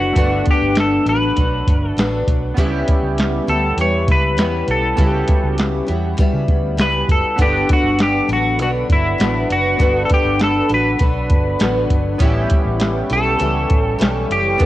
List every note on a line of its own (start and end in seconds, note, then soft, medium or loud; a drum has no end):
0.00 0.15 D3 medium
0.00 0.17 F#3 medium
0.00 0.11 A3 medium
0.00 0.12 B3 medium
0.00 0.17 B3 medium
0.00 0.12 D4 medium
0.00 0.16 D4 medium
0.00 0.45 F#4 medium
0.00 0.13 F#5 medium
0.13 0.40 G1 loud
0.13 1.06 G2 medium
0.13 1.07 D3 medium
0.13 2.52 A3 medium
0.13 2.53 B3 soft
0.13 2.53 D4 medium
0.13 kick medium
0.13 closed hi-hat medium
0.18 1.08 B3 medium
0.18 1.05 D4 medium
0.18 2.54 F#5 medium
0.46 kick medium
0.46 closed hi-hat medium
0.51 0.79 G4 medium
0.62 0.98 G1 medium
0.75 snare loud
0.75 closed hi-hat medium
0.80 1.09 A4 medium
1.06 1.30 A1 medium
1.06 1.37 F#3 soft
1.06 1.37 B3 soft
1.06 1.36 D4 soft
1.06 1.88 B4 medium
1.06 closed hi-hat medium
1.36 1.61 B1 medium
1.36 1.95 D3 medium
1.36 1.97 F#3 medium
1.36 1.98 B3 medium
1.36 1.98 D4 medium
1.36 kick medium
1.36 closed hi-hat medium
1.67 1.91 G1 medium
1.67 kick loud
1.67 closed hi-hat medium
1.88 2.24 A4 medium
1.97 2.21 A1 loud
1.97 2.56 D3 medium
1.97 2.57 F#3 medium
1.97 2.58 B3 medium
1.97 2.59 D4 medium
1.97 snare loud
1.97 closed hi-hat medium
2.27 2.51 B1 medium
2.27 kick medium
2.27 closed hi-hat medium
2.54 2.81 C#2 loud
2.54 3.47 C#3 loud
2.54 3.50 G3 medium
2.54 4.93 B3 medium
2.54 4.94 C#4 medium
2.54 4.95 E4 medium
2.54 kick medium
2.54 closed hi-hat medium
2.58 3.49 B3 medium
2.58 3.46 E4 medium
2.58 4.95 G4 medium
2.88 kick medium
2.88 closed hi-hat medium
3.03 3.39 C#2 loud
3.18 snare medium
3.18 closed hi-hat medium
3.47 3.72 D2 medium
3.47 3.78 G3 soft
3.47 3.78 B3 soft
3.47 3.78 E4 medium
3.47 3.79 A4 medium
3.47 closed hi-hat soft
3.77 4.09 E2 medium
3.77 4.35 C#3 medium
3.77 4.37 G3 medium
3.77 4.39 B3 medium
3.77 4.39 E4 medium
3.77 closed hi-hat medium
3.81 4.10 C#5 loud
4.08 4.38 C#2 loud
4.08 4.66 B4 medium
4.08 kick medium
4.08 closed hi-hat medium
4.37 4.62 E2 loud
4.37 4.95 C#3 medium
4.37 4.97 G3 medium
4.37 4.97 B3 medium
4.37 4.98 E4 medium
4.37 snare loud
4.37 closed hi-hat medium
4.68 4.92 B1 medium
4.68 5.56 A4 medium
4.68 closed hi-hat medium
4.96 5.22 C#2 loud
4.96 5.88 C#3 medium
4.96 5.90 G3 medium
4.96 7.34 B3 medium
4.96 5.88 B3 medium
4.96 7.34 C#4 medium
4.96 7.35 E4 medium
4.96 5.85 E4 medium
4.96 kick medium
4.96 closed hi-hat medium
5.01 5.06 F#4 medium
5.07 7.39 G4 medium
5.28 kick loud
5.28 closed hi-hat medium
5.44 5.80 C#2 medium
5.58 snare medium
5.58 closed hi-hat medium
5.86 6.13 E2 medium
5.86 6.17 G3 soft
5.86 6.18 B3 soft
5.86 6.18 E4 medium
5.86 closed hi-hat soft
6.17 6.76 C#3 medium
6.17 6.78 G3 medium
6.17 6.79 B3 medium
6.17 6.80 E4 medium
6.17 kick loud
6.17 closed hi-hat medium
6.34 6.46 C#3 loud
6.48 6.61 C#2 medium
6.48 kick loud
6.48 closed hi-hat medium
6.63 6.75 D2 medium
6.77 7.02 C#2 medium
6.77 7.38 C#3 medium
6.77 8.31 G3 medium
6.77 7.39 B3 medium
6.77 7.40 E4 medium
6.77 7.08 B4 medium
6.77 snare loud
6.77 closed hi-hat medium
7.09 7.21 F#1 medium
7.09 7.41 A4 medium
7.09 kick medium
7.09 closed hi-hat medium
7.36 7.63 G1 loud
7.36 8.29 G2 medium
7.36 8.29 D3 medium
7.36 9.74 B3 medium
7.36 8.29 B3 medium
7.36 9.75 D4 medium
7.36 9.75 F#5 medium
7.36 kick medium
7.36 closed hi-hat medium
7.41 8.27 D4 medium
7.41 7.71 G4 medium
7.41 9.77 A4 medium
7.41 12.17 B4 medium
7.41 12.17 F#5 medium
7.41 12.17 B5 medium
7.69 8.02 F#4 medium
7.69 kick medium
7.69 closed hi-hat medium
7.83 8.20 G1 medium
7.99 snare loud
7.99 closed hi-hat medium
8.03 8.29 G4 medium
8.28 8.59 A1 medium
8.28 8.58 F#3 soft
8.28 8.60 B3 soft
8.28 8.59 D4 soft
8.28 closed hi-hat soft
8.33 8.61 F#4 medium
8.58 8.83 B1 medium
8.58 9.17 D3 medium
8.58 9.18 F#3 medium
8.58 9.20 B3 medium
8.58 9.20 D4 medium
8.58 8.70 F#4 medium
8.58 closed hi-hat medium
8.89 9.14 G1 medium
8.89 9.47 E4 medium
8.89 kick medium
8.89 closed hi-hat medium
9.18 9.44 A1 loud
9.18 9.79 D3 medium
9.18 9.80 F#3 medium
9.18 9.80 B3 medium
9.18 9.81 D4 medium
9.18 snare loud
9.18 closed hi-hat medium
9.50 9.74 F#1 medium
9.50 10.05 F#4 medium
9.50 closed hi-hat medium
9.77 10.04 G1 loud
9.77 10.69 G2 medium
9.77 10.70 D3 medium
9.77 12.15 B3 medium
9.77 10.69 B3 medium
9.77 12.16 D4 medium
9.77 12.17 F#5 medium
9.77 kick medium
9.77 closed hi-hat medium
9.82 10.68 D4 medium
9.82 12.18 A4 medium
10.05 10.11 A4 medium
10.10 kick medium
10.10 closed hi-hat medium
10.14 10.43 G4 medium
10.25 10.61 G1 medium
10.40 10.73 A4 medium
10.40 snare loud
10.40 closed hi-hat medium
10.69 10.94 A1 medium
10.69 10.98 F#3 soft
10.69 11.00 B3 soft
10.69 10.99 D4 medium
10.69 closed hi-hat soft
10.74 11.88 B4 medium
10.99 11.32 B1 medium
10.99 11.58 D3 medium
10.99 11.59 F#3 medium
10.99 11.60 B3 medium
10.99 11.61 D4 medium
10.99 kick medium
10.99 closed hi-hat medium
11.30 11.54 G1 loud
11.30 kick loud
11.30 closed hi-hat medium
11.59 11.84 A1 medium
11.59 12.20 D3 medium
11.59 12.20 F#3 medium
11.59 12.20 B3 medium
11.59 12.21 D4 medium
11.59 snare loud
11.59 closed hi-hat medium
11.90 12.14 G1 loud
11.90 kick medium
11.90 closed hi-hat medium
12.18 12.44 A1 loud
12.18 13.09 A2 medium
12.18 13.10 E3 loud
12.18 13.12 G3 loud
12.18 14.55 B3 medium
12.18 14.56 C#4 medium
12.18 13.11 C#4 loud
12.18 13.09 E4 medium
12.18 14.57 E4 medium
12.18 14.58 A4 medium
12.18 14.57 G5 medium
12.18 14.58 C#6 medium
12.18 kick loud
12.18 closed hi-hat medium
12.23 14.58 G4 medium
12.50 kick medium
12.50 closed hi-hat medium
12.65 13.01 A1 medium
12.80 snare medium
12.80 closed hi-hat medium
13.10 13.34 B1 medium
13.10 13.39 G3 soft
13.10 13.39 C#4 soft
13.10 13.40 E4 medium
13.10 14.27 A4 loud
13.10 closed hi-hat medium
13.39 13.64 C#2 loud
13.39 13.97 E3 medium
13.39 13.99 G3 medium
13.39 14.00 C#4 medium
13.39 14.00 E4 medium
13.39 closed hi-hat medium
13.70 13.94 A1 loud
13.70 kick loud
13.70 closed hi-hat medium
13.98 14.24 B1 medium
13.98 14.59 E3 medium
13.98 14.66 G3 medium
13.98 14.60 C#4 medium
13.98 14.60 E4 medium
13.98 snare loud
13.98 closed hi-hat medium
14.30 14.54 F#1 medium
14.30 14.66 G4 medium
14.30 closed hi-hat medium
14.57 14.66 G1 loud
14.57 14.66 G2 medium
14.57 14.66 D3 medium
14.57 14.66 B3 medium
14.57 14.66 D4 medium
14.57 14.66 F#5 medium
14.57 kick medium
14.57 closed hi-hat medium
14.63 14.66 A4 medium